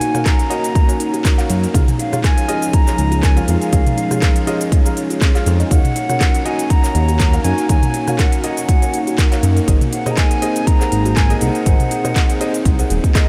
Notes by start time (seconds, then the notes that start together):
Already playing: A#3 C#4 D#4 F#4 C#5 G#5
0.01 D#4, open hi-hat, shaker
0.14 F#4 A#4 C#5 F5, cross-stick, closed hi-hat, mid tom, shaker
0.25 A#4 A#5, kick, cross-stick, clap, closed hi-hat, shaker
0.39 closed hi-hat, shaker
0.50 D#4 F#4 A#4 C#5 D#5, open hi-hat, shaker
0.64 closed hi-hat, shaker
0.75 kick, closed hi-hat, shaker
0.89 F#4 A#4 C#5 G#5, closed hi-hat, shaker
1.00 D#4, open hi-hat, shaker
1.14 F#4, closed hi-hat, shaker
1.25 A#4, kick, cross-stick, clap, closed hi-hat, shaker
1.38 F#4 A#4 C#5 F5, clap, closed hi-hat, shaker
1.50 F#2 D#4, open hi-hat, shaker
1.63 closed hi-hat, shaker
1.74 C#2 F3 G#3 D#4 F4 G#4 C#5 F5, kick, closed hi-hat, shaker
1.88 closed hi-hat, mid tom, shaker
1.99 D#4 F5, open hi-hat, shaker
2.12 F4 G#4 C#5 F5, cross-stick, closed hi-hat, mid tom, shaker
2.24 A#4 G#5, kick, cross-stick, clap, closed hi-hat, shaker
2.38 closed hi-hat, shaker
2.48 D#4 F4 G#4 C#5 D#5, open hi-hat, shaker
2.62 closed hi-hat, shaker
2.73 A#5, kick, closed hi-hat, shaker
2.87 F4 G#4 C#5 A#5, clap, shaker
2.98 C#2 D#4, open hi-hat, shaker
3.12 F4, closed hi-hat, shaker
3.23 A#4 G#5, kick, cross-stick, clap, closed hi-hat, shaker
3.37 F4 G#4 C#5 F5, closed hi-hat, shaker
3.48 F2 D#4 F5, open hi-hat, shaker
3.61 closed hi-hat, shaker
3.73 C#2 D#4 F4 G#4 C#5 F5, kick, closed hi-hat, shaker
3.86 closed hi-hat, mid tom, shaker
3.97 D#4, open hi-hat, shaker
4.11 F4 G#4 C#5 F5, cross-stick, closed hi-hat, mid tom, shaker
4.22 A#4, kick, cross-stick, clap, closed hi-hat, shaker
4.36 closed hi-hat, shaker
4.47 D#4 F4 G#4 C#5 D#5, open hi-hat, shaker
4.61 closed hi-hat, shaker
4.72 kick, closed hi-hat, shaker
4.85 F4 G#4 C#5 A#5, closed hi-hat, shaker
4.97 D#4, open hi-hat, shaker
5.10 F4, closed hi-hat, shaker
5.22 C#4, kick, cross-stick, clap, closed hi-hat, shaker
5.35 F4 G#4 C#5 F5, clap, closed hi-hat, shaker
5.46 F2 D#4, open hi-hat, shaker
5.60 D#5, closed hi-hat, shaker
5.65 G#5
5.71 D#2 A#3 D#4 F#4 A#4 C#5 F5 F#5, kick, closed hi-hat, shaker
5.85 closed hi-hat, mid tom, shaker
5.96 D#4, open hi-hat, shaker
6.09 F#4 A#4 C#5 F#5, cross-stick, closed hi-hat, mid tom, shaker
6.21 A#4, kick, cross-stick, clap, closed hi-hat, shaker
6.35 closed hi-hat, shaker
6.45 D#4 F#4 A#4 C#5 D#5 G#5, open hi-hat, shaker
6.59 closed hi-hat, shaker
6.70 A#5, kick, closed hi-hat, shaker
6.84 F#4 A#4 C#5 G#5, clap, shaker
6.95 D#2 D#4, open hi-hat, shaker
7.08 F#4, closed hi-hat, shaker
7.20 A#4, kick, cross-stick, clap, closed hi-hat, shaker
7.33 F#4 A#4 C#5 F5, closed hi-hat, shaker
7.44 F#2 D#4 G#5, open hi-hat, shaker
7.58 closed hi-hat, shaker
7.69 D#2 D#4 F#4 A#4 C#5 F5 G#5, kick, closed hi-hat, shaker
7.83 closed hi-hat, mid tom, shaker
7.94 D#4, open hi-hat, shaker
8.08 F#4 A#4 C#5 F5, cross-stick, closed hi-hat, mid tom, shaker
8.19 A#4 F#5, kick, cross-stick, clap, closed hi-hat, shaker
8.32 closed hi-hat, shaker
8.44 D#4 F#4 A#4 C#5 D#5 F#5, open hi-hat, shaker
8.57 closed hi-hat, shaker
8.69 kick, closed hi-hat, shaker
8.82 F#4 A#4 C#5 G#5, closed hi-hat, shaker
8.94 D#4, open hi-hat, shaker
9.07 F#4, closed hi-hat, shaker
9.18 A#4, kick, cross-stick, clap, closed hi-hat, shaker
9.32 F#4 A#4 C#5 F5, clap, closed hi-hat, shaker
9.43 F#2 D#4, open hi-hat, shaker
9.57 closed hi-hat, shaker
9.68 G#1 C4 D#4 G#4 A#4 C5 D#5, kick, closed hi-hat, shaker
9.81 closed hi-hat, mid tom, shaker
9.92 D#4 F#5, open hi-hat, shaker
10.06 G#4 A#4 C5 D#5, cross-stick, closed hi-hat, mid tom, shaker
10.11 A#5
10.17 A#4 G#5, kick, cross-stick, clap, closed hi-hat, shaker
10.31 closed hi-hat, shaker
10.42 D#4 G#4 A#4 C5 D#5, open hi-hat, shaker
10.56 closed hi-hat, shaker
10.67 A#5, kick, closed hi-hat, shaker
10.81 G#4 A#4 C5 F#5, clap, shaker
10.92 G#1 D#4, open hi-hat, shaker
11.05 F#4, closed hi-hat, shaker
11.16 A#4 G#5, kick, cross-stick, clap, closed hi-hat, shaker
11.30 G#4 A#4 C5 D#5, closed hi-hat, shaker
11.41 C2 D#4 F#5, open hi-hat, shaker
11.55 closed hi-hat, shaker
11.66 G#1 D#4 G#4 A#4 C5 D#5, kick, closed hi-hat, shaker
11.80 closed hi-hat, mid tom, shaker
11.91 D#4, open hi-hat, shaker
12.04 G#4 A#4 C5 D#5, cross-stick, closed hi-hat, mid tom, shaker
12.16 kick, cross-stick, clap, closed hi-hat, shaker
12.30 closed hi-hat, shaker
12.41 D#4 G#4 A#4 C5 D#5, open hi-hat, shaker
12.54 closed hi-hat, shaker
12.65 C2, kick, closed hi-hat, shaker
12.79 G#4 A#4 C5 F#5, closed hi-hat, shaker
12.90 D#1 D#4, open hi-hat, shaker
13.04 C5, kick, closed hi-hat, shaker
13.15 G#4 A#4 C5 D#5, kick, cross-stick, clap, closed hi-hat, shaker